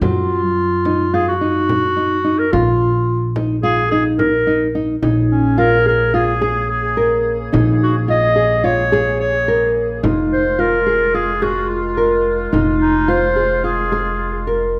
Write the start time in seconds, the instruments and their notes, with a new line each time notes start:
0.01 upright bass F#2, nylon-string guitar F#3, clarinet F4, frame drum
0.85 nylon-string guitar D#4, frame drum
1.14 nylon-string guitar F4, clarinet G#4
1.28 clarinet F#4
1.41 nylon-string guitar D#4
1.69 frame drum
1.97 nylon-string guitar D#4
2.24 nylon-string guitar D#4, frame drum
2.38 clarinet A#4
2.52 upright bass A#1, clarinet F4, nylon-string guitar F4, frame drum
3.36 nylon-string guitar D#4, frame drum
3.63 nylon-string guitar F4, clarinet G#4
3.91 nylon-string guitar D#4, clarinet G#4
4.19 clarinet A#4, frame drum
4.47 nylon-string guitar D#4
4.75 nylon-string guitar D#4
5.02 upright bass A#1, woodwind section C#3 A#3 G#4, nylon-string guitar D#4, frame drum
5.30 clarinet C#4
5.58 nylon-string guitar F4, clarinet A#4
5.86 nylon-string guitar G#4, clarinet A#4
6.14 nylon-string guitar F4, clarinet G#4
6.41 nylon-string guitar G#4, frame drum
6.70 clarinet G#4
6.97 nylon-string guitar A#4
7.53 upright bass A#1, nylon-string guitar D#4, frame drum
7.83 clarinet F#4
8.08 nylon-string guitar F4, clarinet D#5
8.36 nylon-string guitar G#4
8.64 nylon-string guitar F4, clarinet C#5
8.92 nylon-string guitar G#4, frame drum
9.20 clarinet C#5
9.48 nylon-string guitar A#4
10.03 upright bass F1, woodwind section D#3 G#3 F4, nylon-string guitar D#4, frame drum
10.32 clarinet C5
10.59 nylon-string guitar F4, clarinet A#4
10.87 nylon-string guitar G#4
11.14 nylon-string guitar F4, clarinet G#4
11.42 clarinet F#4, nylon-string guitar G#4, frame drum
11.69 clarinet F4
11.97 nylon-string guitar A#4
12.53 upright bass F1, nylon-string guitar D#4, frame drum
12.81 clarinet D#4
13.08 nylon-string guitar F4, clarinet C5
13.36 nylon-string guitar G#4
13.64 nylon-string guitar F4, clarinet G#4
13.92 nylon-string guitar G#4, frame drum
14.47 nylon-string guitar A#4, frame drum